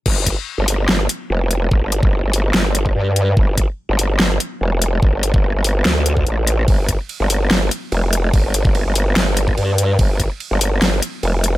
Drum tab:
CC |x---------------|----------------|----------------|----------------|
RD |----------------|----------------|----------------|----------------|
HH |--x---o---x---x-|--x---o---x---x-|--x---o---x---x-|--x---o---x-x-x-|
SD |--------o-------|--------o-------|--------o-------|--------o-------|
BD |o-o-------------|o--o-------o----|o-o-------------|o--o-------o----|

CC |----------------|----------------|----------------|
RD |x---x---x---x---|x---x---x---x---|x---x---x---x---|
HH |--x---o---x---x-|--x---o---x---x-|--x---o---x---x-|
SD |--------o-------|--------o-------|--------o-------|
BD |o-o-------------|o--o-------o----|o-o-------------|